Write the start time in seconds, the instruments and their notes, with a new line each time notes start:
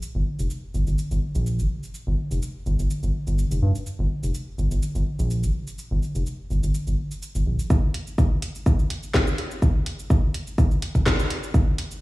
0.02 cabasa
0.15 analog synth bass G1
0.39 analog synth bass F1, cabasa
0.50 cabasa
0.74 analog synth bass G1, cabasa
0.87 analog synth bass G1, cabasa
0.98 cabasa
1.11 analog synth bass G1, cabasa
1.35 analog synth bass A#1, cabasa
1.46 cabasa
1.59 analog synth bass F1, cabasa
1.83 cabasa
1.94 cabasa
2.07 analog synth bass G1
2.31 analog synth bass F1, cabasa
2.42 cabasa
2.66 analog synth bass G1, cabasa
2.79 analog synth bass G1, cabasa
2.90 cabasa
3.03 analog synth bass G1, cabasa
3.27 analog synth bass G1, cabasa
3.38 cabasa
3.51 analog synth bass F1, cabasa
3.62 analog synth bass G2
3.75 cabasa
3.86 cabasa
3.99 analog synth bass G1
4.23 analog synth bass F1, cabasa
4.34 cabasa
4.58 analog synth bass G1, cabasa
4.71 analog synth bass G1, cabasa
4.82 cabasa
4.95 analog synth bass G1, cabasa
5.19 analog synth bass A#1, cabasa
5.30 cabasa
5.43 analog synth bass F1, cabasa
5.67 cabasa
5.78 cabasa
5.91 analog synth bass G1
6.02 cabasa
6.15 analog synth bass F1, cabasa
6.26 cabasa
6.50 analog synth bass G1, cabasa
6.63 analog synth bass G1, cabasa
6.74 cabasa
6.87 analog synth bass G1, cabasa
7.11 cabasa
7.22 cabasa
7.35 analog synth bass G1, cabasa
7.46 analog synth bass A#1
7.59 cabasa
7.70 kick, cabasa
7.94 closed hi-hat
8.07 cabasa
8.18 kick, cabasa
8.42 closed hi-hat, cabasa
8.55 cabasa
8.66 kick, cabasa
8.79 cabasa
8.90 closed hi-hat
9.03 cabasa
9.14 kick, snare, cabasa
9.27 cabasa
9.38 closed hi-hat
9.51 cabasa
9.62 kick, cabasa
9.86 closed hi-hat
9.99 cabasa
10.10 kick, cabasa
10.34 closed hi-hat, cabasa
10.47 cabasa
10.58 kick, cabasa
10.71 cabasa
10.82 closed hi-hat
10.95 kick, cabasa
11.06 kick, snare, cabasa
11.19 cabasa
11.30 closed hi-hat
11.43 cabasa
11.54 kick, cabasa
11.78 closed hi-hat
11.91 cabasa